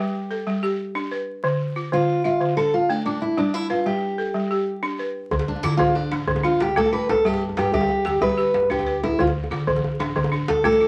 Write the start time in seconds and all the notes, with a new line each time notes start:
Already playing: G4 B4
0.00 G3
0.31 A4
0.47 G3
0.63 G4
0.95 D4
1.12 B4
1.44 D3
1.76 F4
1.92 D3 F4
2.24 F4 E5
2.41 D3
2.57 D4 A4
2.74 F4
2.90 A3 D4
3.06 D4 F4
3.22 E4
3.37 G3 D4
3.54 E4
3.70 F4 B4
3.86 G3 G4
4.18 A4
4.34 G3
4.51 G4
4.83 D4
4.99 B4
5.31 D2 D3, djembe bass
5.39 djembe slap
5.48 D4
5.55 djembe tone
5.63 D3 E4 F4, djembe slap
5.77 A1 D3 F4, djembe bass
5.95 D4, djembe tone
6.11 A1 D4, djembe slap
6.27 A1 D3, djembe bass
6.36 djembe slap, djembe tone
6.44 D4 F4
6.60 D2 G4, djembe slap
6.69 djembe slap, djembe tone
6.76 A1 A3 F4 A4, djembe slap, djembe bass
6.86 djembe slap
6.93 F4 B4
7.09 A4, djembe slap, djembe tone
7.25 G1 G3 G4, djembe bass
7.34 djembe slap
7.49 djembe tone
7.57 G2 G4 B4, djembe slap
7.72 D2 G3 G4, djembe bass
7.81 djembe slap
7.89 djembe tone
8.05 D2 G4, djembe slap
8.21 G3 B4, djembe bass
8.30 djembe slap, djembe tone
8.38 G4
8.54 G1, djembe slap
8.62 djembe slap, djembe tone
8.70 D2 D4 G4 B4, djembe slap, djembe bass
8.79 djembe slap
8.86 B4
9.03 E4, djembe slap, djembe tone
9.19 D2 D3 F4, djembe bass
9.27 djembe slap
9.44 djembe tone
9.51 D3 F4, djembe slap
9.67 A1 D3, djembe bass
9.76 djembe slap
9.84 djembe tone
10.00 A1 D4, djembe slap
10.16 A1 D3, djembe bass
10.24 djembe slap, djembe tone
10.32 D4
10.48 D2 A4, djembe slap
10.56 djembe slap
10.64 A1 A3 F4 A4, djembe slap, djembe bass
10.73 djembe slap
10.80 F4